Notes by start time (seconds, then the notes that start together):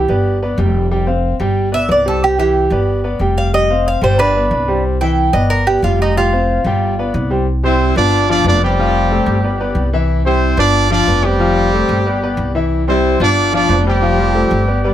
Already playing: G4
0.08 G1 B3 B4 D5
0.42 B3 B4 D5
0.58 F1 G3 G4 G5
0.91 G3 G4 G5
1.07 C4 C5 F5
1.40 G1 G3 G4 G5
1.72 B3 B4 D5 E5
1.89 C2 B3 B4 D5
2.06 G3 G4 A4 C5
2.24 G4
2.38 E3 E4 G4 E5
2.70 G1 B3 B4 D5
3.04 B3 B4 D5
3.19 F1 G3 G4 G5
3.38 F5
3.54 G3 G4 D#5 G5
3.70 C4 C5 F5
3.88 F5
4.01 G1 G3 G4 C5 G5
4.19 D4 B4
4.36 B3 B4 D5
4.51 C2 B3 B4 D5
4.68 G3 G4 C5
5.01 E3 E4 E5 G5
5.33 G1 B3 B4 D5 D#5
5.50 A#4
5.67 B3 G4 B4 D5
5.82 F1 G3 F4 G4 G5
6.02 D#4
6.16 G3 F4 G4 G5
6.33 C4 C5 F5
6.64 G1 G3 G4 G5
6.99 B3 B4 D5
7.14 C2 B3 B4 D5
7.30 G3 G4 C5
7.64 G3 C4 E4 G4 C5
7.96 G1 B3 D4 F4 B4 D5
8.29 F3 D4 F4 D5 F5
8.44 F1 B3 D4 F4 B4 D5
8.63 G3 C4 G4
8.79 F3 F4 F5
9.11 A3 A4 C5
9.26 G1
9.44 B3 B4 D5
9.60 B3 B4 D5
9.75 C2
9.93 E3 E4 E5
10.25 G3 C4 E4 G4 C5
10.57 G1 B3 D4 F4 B4 D5
10.90 F3 D4 F4 D5 F5
11.07 F1 B3 B4 D5
11.23 G3 C4 G4
11.39 F3 F4 F5
11.74 A3 A4 C5
11.89 G1
12.06 B3 B4 D5
12.23 B3 B4 D5
12.37 C2
12.55 E3 E4 E5
12.88 G3 C4 E4 G4 C5
13.20 G1 B3 D4 F4 B4 D5
13.52 F3 D4 F4 D5 F5
13.69 F1 F3 B3 B4 D5
13.86 G3 C4 G4
14.02 F3 F4 F5
14.19 F3
14.35 A3 A4 C5
14.51 G1
14.68 B3 B4 D5
14.84 G3 B3 B4 D5